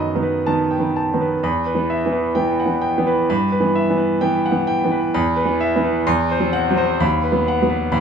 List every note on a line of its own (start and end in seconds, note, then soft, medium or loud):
0.00 1.44 F#2 medium
0.00 0.11 D#3 soft
0.00 0.11 B3 soft
0.00 0.12 B4 soft
0.00 0.37 D#5 medium
0.00 1.44 B5 medium
0.15 0.43 D#3 soft
0.15 0.43 B3 soft
0.23 0.60 B4 soft
0.46 0.75 D#3 medium
0.46 0.75 B3 medium
0.46 0.85 A5 medium
0.71 0.95 G5 soft
0.79 1.08 D#3 soft
0.79 1.08 B3 soft
0.96 1.33 A5 medium
1.14 1.40 D#3 medium
1.14 1.41 B3 soft
1.21 1.43 B4 medium
1.43 1.73 E2 medium
1.43 1.80 B5 medium
1.66 2.03 B4 medium
1.74 2.01 E3 soft
1.74 2.02 B3 soft
1.90 2.26 E5 medium
2.05 2.33 E3 soft
2.05 2.33 B3 medium
2.12 2.50 B4 soft
2.35 2.63 E3 medium
2.35 2.64 B3 medium
2.35 2.73 G5 medium
2.60 2.83 F#5 soft
2.66 2.95 E3 medium
2.66 2.95 B3 soft
2.82 3.20 G5 medium
2.98 3.26 E3 medium
2.98 3.26 B3 medium
3.07 3.30 B4 medium
3.30 3.59 G2 medium
3.30 3.66 B5 medium
3.52 3.89 B4 medium
3.60 3.87 E3 medium
3.60 3.88 B3 medium
3.75 4.12 E5 medium
3.90 4.18 E3 medium
3.90 4.18 B3 medium
3.97 4.35 B4 medium
4.21 4.49 E3 medium
4.21 4.50 B3 medium
4.21 4.59 G5 medium
4.46 4.69 F#5 medium
4.52 4.81 E3 medium
4.52 4.81 B3 medium
4.67 5.06 G5 medium
4.84 5.12 E3 medium
4.84 5.13 B3 medium
4.92 5.15 B4 medium
5.14 5.45 E2 medium
5.14 5.52 B5 medium
5.37 5.74 B4 medium
5.45 5.73 E3 medium
5.45 5.73 B3 medium
5.61 5.97 E5 medium
5.76 6.03 E3 medium
5.76 6.03 B3 medium
5.84 6.07 B4 medium
6.07 6.36 E2 medium
6.07 6.44 C6 medium
6.31 6.68 C5 medium
6.39 6.66 F#3 medium
6.39 6.67 C4 medium
6.53 6.90 F#5 medium
6.70 6.97 F#3 medium
6.70 6.97 C4 medium
6.77 7.00 C5 medium
7.00 7.30 D#2 medium
7.00 7.37 B5 medium
7.24 7.60 B4 medium
7.31 7.58 F#3 medium
7.31 7.59 B3 medium
7.48 7.84 F#5 medium
7.62 7.89 F#3 medium
7.62 7.89 B3 medium
7.69 7.92 B4 medium
7.92 8.00 D#2 medium
7.92 8.00 B5 medium